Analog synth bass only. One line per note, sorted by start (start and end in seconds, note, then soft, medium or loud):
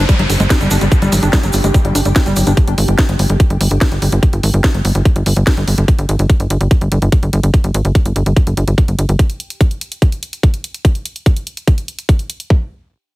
0.19 0.27 G1 medium
0.30 0.37 G1 loud
0.40 0.47 G1 medium
0.61 0.68 G1 medium
0.71 0.78 G1 loud
0.81 0.89 G1 medium
1.02 1.09 G1 medium
1.12 1.20 G#1 loud
1.23 1.30 G1 medium
1.43 1.51 G1 medium
1.54 1.61 G1 loud
1.64 1.71 G1 medium
1.85 1.92 G1 medium
1.95 2.03 G1 loud
2.05 2.13 G1 medium
2.26 2.34 G1 medium
2.36 2.44 G1 loud
2.47 2.54 G1 medium
2.67 2.75 G1 medium
2.78 2.85 G#1 loud
2.88 2.96 G1 medium
3.09 3.16 G1 medium
3.19 3.27 G1 loud
3.30 3.37 G1 medium
3.50 3.58 G1 medium
3.61 3.68 G1 loud
3.71 3.78 G1 medium
3.92 3.99 G1 medium
4.02 4.09 G1 loud
4.12 4.20 G1 medium
4.33 4.40 G1 medium
4.43 4.51 G#1 loud
4.54 4.61 G1 medium
4.74 4.82 G1 medium
4.85 4.92 G1 loud
4.95 5.03 G1 medium
5.16 5.23 G1 medium
5.26 5.34 G1 loud
5.36 5.44 G1 medium
5.57 5.65 G1 medium
5.68 5.75 G1 loud
5.78 5.85 G1 medium
5.99 6.06 G1 medium
6.09 6.16 G#1 loud
6.19 6.27 G1 medium
6.40 6.47 G1 medium
6.50 6.58 G1 loud
6.61 6.68 G1 medium
6.81 6.89 G1 medium
6.92 6.99 G1 loud
7.02 7.09 G1 medium
7.23 7.30 G1 medium
7.33 7.40 G1 loud
7.43 7.51 G1 medium
7.64 7.71 G1 medium
7.74 7.82 G#1 loud
7.85 7.92 G1 medium
8.05 8.13 G1 medium
8.16 8.23 G1 loud
8.26 8.34 G1 medium
8.47 8.54 G1 medium
8.57 8.65 G1 loud
8.67 8.75 G1 medium
8.88 8.96 G1 medium
8.99 9.06 G1 loud
9.09 9.16 G1 medium